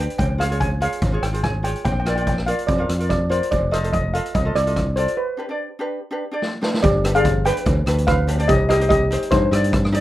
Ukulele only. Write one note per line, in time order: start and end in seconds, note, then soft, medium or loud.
0.00 0.18 D4 medium
0.00 0.19 G4 medium
0.00 0.19 B4 medium
0.38 0.46 F4 medium
0.38 0.46 G#4 medium
0.38 0.47 C#5 medium
0.50 0.69 F4 medium
0.50 0.69 G#4 medium
0.50 0.70 C#5 medium
0.81 1.00 F4 medium
0.81 1.00 G#4 medium
0.81 1.01 C#5 medium
1.12 1.25 F4 medium
1.12 1.25 G#4 medium
1.12 1.26 C#5 medium
1.33 1.52 F4 medium
1.33 1.52 G#4 medium
1.33 1.53 C5 medium
1.63 1.84 F4 medium
1.63 1.85 G#4 medium
1.63 1.86 C#5 medium
2.06 2.12 F4 medium
2.06 2.13 A#4 medium
2.06 2.13 D5 medium
2.16 2.35 F4 medium
2.16 2.36 A#4 medium
2.16 2.36 D5 medium
2.47 2.66 F4 medium
2.47 2.67 A#4 medium
2.47 2.67 D5 medium
2.78 2.91 F4 medium
2.78 2.91 A#4 medium
2.78 2.92 F5 medium
2.99 3.18 F4 medium
2.99 3.19 A#4 medium
2.99 3.19 D5 medium
3.30 3.51 F4 medium
3.30 3.52 A#4 medium
3.30 3.52 D5 medium
3.71 3.79 F4 medium
3.71 3.79 A4 medium
3.71 3.80 C5 medium
3.83 4.02 F4 medium
3.83 4.02 A4 medium
3.83 4.03 C5 medium
4.13 4.33 F4 medium
4.13 4.33 A4 medium
4.13 4.33 D#5 medium
4.45 4.57 F4 medium
4.45 4.58 A4 medium
4.45 4.58 D#5 medium
4.66 4.85 F4 medium
4.66 4.85 A4 medium
4.66 4.86 D#5 medium
4.96 5.17 F4 medium
4.96 5.18 A4 medium
4.96 5.18 D5 medium
5.37 5.45 D4 medium
5.37 5.45 G4 medium
5.37 5.46 B4 medium
5.49 5.68 D4 medium
5.49 5.68 G4 medium
5.49 5.69 D5 medium
5.79 5.98 D4 medium
5.79 5.99 G4 medium
5.79 5.99 B4 medium
6.11 6.23 D4 medium
6.11 6.23 G4 medium
6.11 6.24 B4 medium
6.32 6.51 D4 medium
6.32 6.51 G4 medium
6.32 6.52 D5 medium
6.61 6.83 D4 medium
6.61 6.83 G4 medium
6.61 6.84 B4 medium
7.04 7.11 D4 medium
7.04 7.11 G4 medium
7.04 7.12 B4 medium
7.15 7.34 D4 medium
7.15 7.34 G4 medium
7.15 7.34 D5 medium
7.45 7.70 D4 medium
7.45 7.71 G4 medium
7.45 7.71 B4 medium
7.86 8.12 D4 medium
7.86 8.12 G4 medium
7.86 8.13 B4 medium
8.27 8.34 D4 medium
8.27 8.35 G4 medium
8.27 8.35 B4 medium
8.38 8.48 D4 medium
8.38 8.49 G4 medium
8.38 8.49 D5 medium
8.69 8.76 D#4 medium
8.69 8.76 G4 medium
8.69 8.77 C5 medium
8.80 8.98 D#4 medium
8.80 8.99 G4 medium
8.80 8.99 C5 medium
9.11 9.36 D#4 medium
9.11 9.36 G4 medium
9.11 9.37 C5 medium
9.51 9.77 D#4 medium
9.51 9.77 G4 medium
9.51 9.78 D5 medium
9.92 9.99 D#4 medium
9.92 10.00 G4 medium
9.92 10.00 D5 loud